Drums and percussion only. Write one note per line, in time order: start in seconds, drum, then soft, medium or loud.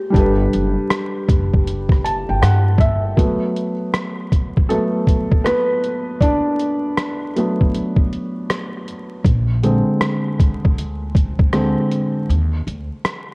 0.14 kick loud
0.14 closed hi-hat medium
0.53 closed hi-hat medium
0.90 cross-stick loud
0.90 closed hi-hat medium
1.28 kick medium
1.28 closed hi-hat medium
1.53 kick medium
1.67 closed hi-hat medium
1.89 kick medium
1.89 cross-stick soft
2.06 closed hi-hat medium
2.43 cross-stick loud
2.43 closed hi-hat medium
2.78 kick medium
2.78 closed hi-hat medium
3.17 kick medium
3.17 closed hi-hat medium
3.56 closed hi-hat medium
3.94 cross-stick loud
3.94 closed hi-hat medium
4.32 kick medium
4.32 closed hi-hat medium
4.57 kick medium
4.70 closed hi-hat medium
5.07 kick medium
5.07 closed hi-hat medium
5.32 kick loud
5.46 cross-stick loud
5.46 closed hi-hat medium
5.84 closed hi-hat medium
6.21 kick medium
6.21 closed hi-hat medium
6.60 closed hi-hat medium
6.97 cross-stick loud
6.97 closed hi-hat medium
7.36 closed hi-hat medium
7.61 kick medium
7.75 closed hi-hat medium
7.96 kick medium
8.13 closed hi-hat medium
8.50 cross-stick loud
8.50 closed hi-hat medium
8.88 closed hi-hat medium
9.25 kick medium
9.25 closed hi-hat medium
9.64 closed hi-hat medium
10.01 cross-stick loud
10.01 closed hi-hat medium
10.40 kick medium
10.40 closed hi-hat medium
10.65 kick medium
10.78 closed hi-hat medium
11.15 kick medium
11.15 closed hi-hat medium
11.39 kick medium
11.53 cross-stick loud
11.53 closed hi-hat medium
11.92 closed hi-hat soft
12.30 closed hi-hat medium
12.68 closed hi-hat medium
13.05 cross-stick loud
13.05 closed hi-hat medium